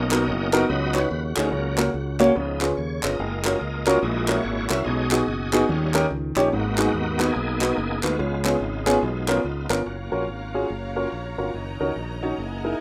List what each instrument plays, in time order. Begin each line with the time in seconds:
Already playing: fingered electric bass B1, grand piano B2, tonewheel organ A#3 C#4 D#4 F#4 A#4 D#5
0.11 grand piano B3 D#4 F#4 A#4, clap
0.28 fingered electric bass F#1
0.53 grand piano B3 D#4 F#4 A#4, clap
0.69 fingered electric bass C#2, grand piano C#3, tonewheel organ F#3 B3 D#4 F#4 B4 D#5
0.94 grand piano C#4 D#4 F#4 B4, tonewheel organ C#5, clap
1.10 fingered electric bass D#2, tonewheel organ B4
1.36 fingered electric bass D2, grand piano C#4 D#4 F#4 G#4, tonewheel organ C#4 F#4 A#4, clap
1.51 fingered electric bass C#2, grand piano C#3, tonewheel organ F#3 A#3 C#4
1.78 grand piano A#3 C#4 F#4 A#4, clap
1.94 fingered electric bass C#2
2.20 grand piano A#3 C#4 F#4 C#5, clap
2.34 fingered electric bass C#2, grand piano C#3, tonewheel organ F3 B3 D#4
2.61 grand piano C#4 F4 G#4 B4, tonewheel organ A#4, clap
2.77 fingered electric bass D#2, tonewheel organ C#5
3.03 fingered electric bass G1, grand piano C#4 F4 G#4 B4, tonewheel organ A#4 D#5, clap
3.19 fingered electric bass F#1, tonewheel organ G#3 A#3 F4
3.45 grand piano C#4 F4 F#4 A#4, clap
3.61 fingered electric bass C#2
3.87 grand piano C#4 F4 F#4 A#4, clap
4.02 fingered electric bass A#1, grand piano A#2, tonewheel organ G#3 A#3 E4 F#4 D#5
4.28 grand piano C#4 E4 F#4 A#4, clap
4.36 tonewheel organ E4 F#4 C#5
4.44 fingered electric bass G#1
4.69 fingered electric bass C2, grand piano C#4 E4 F#4 A#4, tonewheel organ E5, clap
4.80 tonewheel organ F5
4.84 fingered electric bass B1, grand piano B2, tonewheel organ G#3 C#4 D#4 F#4 G#4 D#5
5.11 grand piano B3 D#4 F#4 G#4, clap
5.27 fingered electric bass F#1
5.53 grand piano B3 D#4 F#4 G#4, clap
5.69 fingered electric bass D#2, grand piano D#3, tonewheel organ G3 C#4 F4
5.94 grand piano C#4 D#4 G4 A#4, clap
6.11 fingered electric bass C#2
6.36 fingered electric bass A#1, grand piano C#4 D#4 G4 C#5, clap
6.52 fingered electric bass G#1, grand piano G#2, tonewheel organ A#3 B3 D#4 F#4
6.78 grand piano B3 D#4 F#4 G#4, tonewheel organ B3 D#4 F#4, clap
6.94 fingered electric bass D#2
7.19 grand piano B3 D#4 F#4 B4, tonewheel organ B3 D#4 G#4, clap
7.36 fingered electric bass B1
7.61 grand piano B3 D#4 F#4 B4, clap
7.77 fingered electric bass F#1, tonewheel organ G#4
8.03 fingered electric bass D2, tonewheel organ G#3 B3 F4, grand piano B3 D#4 F#4 B4, clap
8.19 fingered electric bass C#2, grand piano C#3
8.44 tonewheel organ B3 D#4 F4, grand piano B3 C#4 F4 G#4, clap
8.61 fingered electric bass G#1
8.86 grand piano B3 C#4 F4 G#4, clap
9.03 fingered electric bass B1
9.28 grand piano B3 C#4 F4 A#4, clap
9.44 fingered electric bass C#2, tonewheel organ B3 D#4 F4
9.70 fingered electric bass G1, grand piano B3 C#4 F4 A#4, clap
9.86 fingered electric bass F#1, tonewheel organ A#3 C#4 F4 F#4, string section C#5 F5 A#5
10.12 fingered electric bass A#1, grand piano C#4 F4 F#4 A#4
10.28 fingered electric bass G#1
10.54 grand piano C#4 F4 F#4 G#4
10.70 fingered electric bass F#1
10.96 grand piano C#4 F4 F#4 A#4
11.12 fingered electric bass A#1
11.38 fingered electric bass G1, grand piano C#4 F4 F#4 A#4
11.54 fingered electric bass F#1, tonewheel organ D#3, string section D#5
11.80 fingered electric bass C#2, grand piano C#4 D#4 F#4 A#4
11.96 fingered electric bass A#1
12.23 grand piano C#4 D#4 F#4 C#5
12.38 fingered electric bass F#1, tonewheel organ E3 D#4 G#4, string section F#5 G#5
12.64 grand piano D#4 E4 G#4 A#4